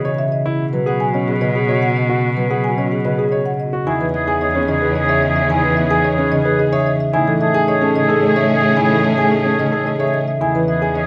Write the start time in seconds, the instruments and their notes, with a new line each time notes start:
Already playing: cello B2, harp C#3 E3 B3
0.05 grand piano C#5, marimba D#5
0.19 marimba E5
0.32 marimba D#5
0.46 grand piano E4
0.59 cello B2
0.73 harp F#3, marimba B4
0.86 harp B3, grand piano G#4, marimba F#5
1.00 marimba G#5
1.14 grand piano C#4, marimba D#5
1.27 harp B3, marimba G#4
1.41 harp C#3, grand piano B4, marimba D#5
1.55 grand piano G#4, marimba G#4
1.69 grand piano C#5, marimba D#5
1.82 marimba F#5
1.96 marimba D#5
2.09 grand piano F#4
2.37 harp F#3, marimba B4
2.50 harp B3, grand piano G#4, marimba F#5
2.64 marimba G#5
2.78 grand piano C#4, marimba D#5
2.91 harp B3, marimba G#4
3.05 harp C#3, grand piano B4, marimba D#5
3.18 grand piano G#4, marimba G#4
3.32 grand piano C#5, marimba D#5
3.46 marimba F#5
3.60 marimba D#5
3.73 grand piano F#4
3.86 cello E2, harp D#3, string section C#4 G#4, grand piano E4, oboe G#4, marimba G#5
4.00 harp E3, marimba B4
4.14 harp B3, oboe G#4, marimba E5
4.27 grand piano G#4, marimba G#5
4.41 oboe G#4, grand piano C#5, marimba D#5
4.55 harp B3, grand piano C#4, marimba G#4
4.68 harp C#3, oboe G#4, marimba D#5
4.82 marimba G#4, grand piano B4
4.95 grand piano G#4, marimba D#5
5.00 oboe G#4
5.09 grand piano C#5, marimba E5
5.22 marimba D#5
5.29 oboe G#4
5.36 marimba E5
5.50 harp D#3, grand piano E4, marimba G#5
5.57 oboe G#4
5.63 harp E3, marimba B4
5.77 harp B3, marimba E5
5.86 oboe G#4
5.91 grand piano G#4, marimba G#5
6.04 grand piano C#5, marimba D#5
6.14 grand piano C#4, oboe G#4
6.18 harp B3, marimba G#4
6.32 harp C#3, marimba D#5
6.43 oboe G#4, marimba G#4, grand piano B4
6.59 grand piano G#4, marimba D#5
6.71 oboe G#4, grand piano C#5, marimba E5
6.86 marimba D#5
7.00 marimba E5
7.13 cello A2, harp D#3, string section C#4 G#4, grand piano E4, oboe G#4, marimba G#5
7.27 harp E3, marimba A4
7.41 harp A3, oboe G#4, marimba E5
7.54 grand piano G#4, marimba G#5
7.68 oboe G#4, grand piano C#5, marimba D#5
7.81 harp A3, grand piano C#4, marimba G#4
7.96 harp C#3, oboe G#4, marimba D#5
8.08 marimba G#4, grand piano A4
8.22 grand piano G#4, marimba D#5
8.27 oboe G#4
8.36 grand piano C#5, marimba E5
8.50 marimba D#5
8.56 oboe G#4
8.63 marimba E5
8.77 harp D#3, grand piano E4, marimba G#5
8.84 oboe G#4
8.91 harp E3, marimba A4
9.04 harp A3, marimba E5
9.13 oboe G#4
9.18 grand piano G#4, marimba G#5
9.32 grand piano C#5, marimba D#5
9.41 grand piano C#4, oboe G#4
9.45 harp A3, marimba G#4
9.59 harp C#3, marimba D#5
9.70 oboe G#4, marimba G#4, grand piano A4
9.86 grand piano G#4, marimba D#5
9.99 oboe G#4, grand piano C#5, marimba E5
10.14 marimba D#5
10.28 marimba E5
10.41 cello E2, harp D#3, string section C#4 G#4, grand piano E4, oboe G#4, marimba G#5
10.55 harp E3, marimba B4
10.68 harp B3, oboe G#4, marimba E5
10.82 grand piano G#4, marimba G#5
10.95 harp C#4, oboe G#4, grand piano C#5, marimba D#5